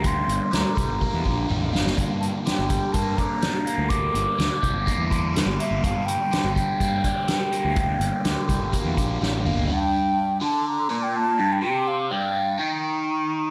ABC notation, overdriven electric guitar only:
X:1
M:4/4
L:1/8
Q:1/4=124
K:Gm
V:1 name="Overdriven electric guitar" clef=bass
[G,,D,G,B,]2 D, G, B, D, G, B, | G,,2 D, G, B, D, G, B, | G,,2 D, G, B, D, G, B, | G,,2 D, G, B, D, G, B, |
G,,2 D, G, B, D, G, B, | G,,3 D,2 B,,2 G,, | C,2 G,,2 E,4 |]